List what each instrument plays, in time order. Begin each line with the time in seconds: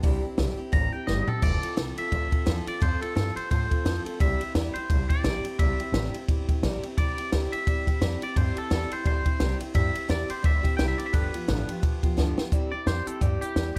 Already playing: clean electric guitar D4
0.03 upright bass C2, steel-string acoustic guitar C3 G3 C4 E4 G4, kick, open hi-hat
0.22 steel-string acoustic guitar C4 E4 G4, muted upright bass stroke
0.38 upright bass B1, steel-string acoustic guitar G3 C4 E4 G4, snare, open hi-hat
0.57 steel-string acoustic guitar C4 E4 G4, muted upright bass stroke
0.72 upright bass A1, steel-string acoustic guitar C3 G3 C4 E4 G4, clean electric guitar A#5, kick, open hi-hat
0.92 steel-string acoustic guitar C4 E4 G4, clean electric guitar G5
1.07 upright bass G1, steel-string acoustic guitar G3 C4 E4 G4, clean electric guitar D#5, snare
1.27 steel-string acoustic guitar C4 E4 G4, clean electric guitar A4, muted upright bass stroke, floor tom
1.42 upright bass F1, steel-string acoustic guitar F3 C4 F4 A4, clean electric guitar D5, kick, crash
1.61 steel-string acoustic guitar C4 F4 A4, ride
1.76 upright bass C2, steel-string acoustic guitar F3 C4 F4 A4, snare, ride
1.96 steel-string acoustic guitar C4 F4 A4, clean electric guitar E5, ride
2.11 upright bass D2, steel-string acoustic guitar F3 C4 F4 A4, kick, ride
2.31 steel-string acoustic guitar C4 F4 A4, kick, ride
2.46 upright bass E2, steel-string acoustic guitar F3 C4 F4 A4, snare, ride
2.66 steel-string acoustic guitar C4 F4 A4, clean electric guitar D5, muted upright bass stroke, ride
2.80 upright bass F2, steel-string acoustic guitar F3 C4 F4 A4, clean electric guitar C5, kick, ride
3.01 steel-string acoustic guitar C4 F4 A4, clean electric guitar A4, muted upright bass stroke, ride
3.15 upright bass G2, steel-string acoustic guitar F3 C4 F4 A4, clean electric guitar A4, snare, ride
3.36 steel-string acoustic guitar C4 F4 A4, clean electric guitar C5, muted upright bass stroke, ride
3.50 upright bass A2, steel-string acoustic guitar F3 C4 F4 A4, clean electric guitar C5, kick, ride
3.70 steel-string acoustic guitar C4 F4 A4, kick, ride
3.85 upright bass F2, steel-string acoustic guitar F3 C4 F4 A4, snare, ride
4.05 steel-string acoustic guitar C4 F4 A4, muted upright bass stroke, ride
4.20 upright bass C2, steel-string acoustic guitar C3 G3 C4 E4 G4, clean electric guitar E5, kick, ride
4.40 steel-string acoustic guitar C4 E4 G4, ride
4.54 upright bass E2, steel-string acoustic guitar C3 G3 C4 E4 G4, snare, ride
4.74 steel-string acoustic guitar C4 E4 G4, clean electric guitar C5, muted upright bass stroke, ride
4.89 upright bass C2, steel-string acoustic guitar G3 C4 E4 G4, kick, ride
5.09 steel-string acoustic guitar C4 E4 G4, clean electric guitar D5, kick, ride
5.24 upright bass A#1, steel-string acoustic guitar C3 G3 C4 E4 G4, snare, ride
5.44 steel-string acoustic guitar C4 E4 G4, muted upright bass stroke, ride
5.59 upright bass C2, steel-string acoustic guitar C3 G3 C4 E4 G4, clean electric guitar E5, kick, ride
5.79 steel-string acoustic guitar C4 E4 G4, muted upright bass stroke, ride
5.92 upright bass A1, steel-string acoustic guitar C3 G3 C4 E4 G4, snare, ride
6.13 steel-string acoustic guitar C4 E4 G4, muted upright bass stroke, ride
6.28 upright bass G1, steel-string acoustic guitar G3 C4 E4 G4, kick, ride
6.49 steel-string acoustic guitar C4 E4 G4, kick, ride
6.62 upright bass A#1, steel-string acoustic guitar C3 G3 C4 E4 G4, snare, ride
6.83 steel-string acoustic guitar C4 E4 G4, muted upright bass stroke, ride
6.98 upright bass C2, steel-string acoustic guitar C3 G3 C4 E4 G4, clean electric guitar D5, kick, ride
7.18 steel-string acoustic guitar C4 E4 G4, muted upright bass stroke, ride
7.32 upright bass D2, steel-string acoustic guitar C3 G3 C4 E4 G4, snare, ride
7.52 steel-string acoustic guitar C4 E4 G4, clean electric guitar E5, ride
7.67 upright bass E2, steel-string acoustic guitar G3 C4 E4 G4, kick, ride
7.87 steel-string acoustic guitar C4 E4 G4, kick, ride
8.01 upright bass F2, steel-string acoustic guitar C3 G3 C4 E4 G4, snare, ride
8.22 steel-string acoustic guitar C4 E4 G4, clean electric guitar D5, muted upright bass stroke, ride
8.36 upright bass G2, steel-string acoustic guitar C3 G3 C4 E4 G4, clean electric guitar C5, kick, ride
8.56 steel-string acoustic guitar C4 E4 G4, clean electric guitar A4, muted upright bass stroke, ride
8.70 upright bass E2, steel-string acoustic guitar C3 G3 C4 E4 G4, clean electric guitar A4, snare, ride
8.90 steel-string acoustic guitar C4 E4 G4, clean electric guitar C5, muted upright bass stroke, ride
9.04 upright bass D2, steel-string acoustic guitar G3 C4 E4 G4, clean electric guitar C5, kick, ride
9.25 steel-string acoustic guitar C4 E4 G4, kick, ride
9.40 upright bass C2, steel-string acoustic guitar C3 G3 C4 E4 G4, snare, ride
9.60 steel-string acoustic guitar C4 E4 G4, muted upright bass stroke, ride
9.74 upright bass G2, steel-string acoustic guitar C3 G3 C4 E4 G4, clean electric guitar E5, kick, ride
9.94 steel-string acoustic guitar C4 E4 G4, muted upright bass stroke, ride
10.08 upright bass E2, steel-string acoustic guitar C3 G3 C4 E4 G4, clean electric guitar D5, snare, ride
10.28 steel-string acoustic guitar C4 E4 G4, clean electric guitar C5, muted upright bass stroke, ride
10.42 upright bass D2, steel-string acoustic guitar G3 C4 E4 G4, clean electric guitar E5, kick, ride
10.63 steel-string acoustic guitar C4 E4 G4, kick, ride
10.77 upright bass C2, steel-string acoustic guitar C3 G3 C4 E4 G4, clean electric guitar G5, snare, ride
10.88 clean electric guitar E5
10.98 steel-string acoustic guitar C4 E4 G4, clean electric guitar D5, muted upright bass stroke, ride
11.06 clean electric guitar E5
11.13 upright bass G1, steel-string acoustic guitar G2 D3 F3 B3 F4 G4, clean electric guitar B4, kick, ride
11.33 steel-string acoustic guitar F3 B3 F4 G4, ride
11.48 upright bass A1, steel-string acoustic guitar G2 D3 F3 B3 F4 G4, snare, ride
11.68 steel-string acoustic guitar F3 B3 F4 G4, muted upright bass stroke, ride
11.82 upright bass B1, steel-string acoustic guitar F3 B3 F4 G4, kick, ride
12.03 steel-string acoustic guitar F3 B3 F4 G4, kick, ride
12.17 upright bass D2, steel-string acoustic guitar G2 D3 F3 B3 F4 G4, snare
12.37 steel-string acoustic guitar F3 B3 F4 G4, muted upright bass stroke, snare
12.52 upright bass E2, steel-string acoustic guitar C3 G3 C4 E4 G4, kick, closed hi-hat
12.72 steel-string acoustic guitar C4 G4, clean electric guitar D5, muted upright bass stroke
12.86 upright bass F2, steel-string acoustic guitar G3 C4 E4 G4, clean electric guitar C5, snare, closed hi-hat
13.05 steel-string acoustic guitar C4 E4 G4, clean electric guitar A4, muted upright bass stroke, closed hi-hat
13.21 upright bass G2, steel-string acoustic guitar C3 G3 C4 E4 G4, clean electric guitar G4, kick, closed hi-hat
13.41 steel-string acoustic guitar C4 E4 G4, clean electric guitar G4, muted upright bass stroke, closed hi-hat
13.56 upright bass E2, steel-string acoustic guitar G3 C4 E4 G4, snare, closed hi-hat